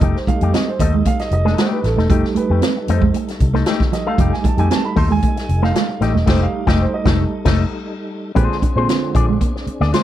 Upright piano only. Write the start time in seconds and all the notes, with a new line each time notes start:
Already playing: D#5
0.16 C5
0.27 G3 A3 D#4 F5
0.54 D#5
0.68 C5
0.80 D#5
1.06 F5
1.20 D#5
1.33 D#5
1.59 C5
1.73 B4
1.85 A4
2.10 G3 A3 D#4
2.37 B4
2.90 C5
3.93 D#5
4.07 F5
4.18 G3 A3 D#4
4.33 G#5
4.46 A5
4.59 G#5
4.72 A5
4.85 B5
4.98 C6
5.12 G#5
5.64 F5
6.03 D#5
6.27 G3 A3 D#4 C5
6.42 F5
6.68 D#5
6.80 C5
6.94 D#5
7.04 G3 A3 D#4
8.36 D3 F3 G#3 C4
8.76 C3 F3 G#3 C4
8.83 D3
9.93 D3 F3 G#3 C4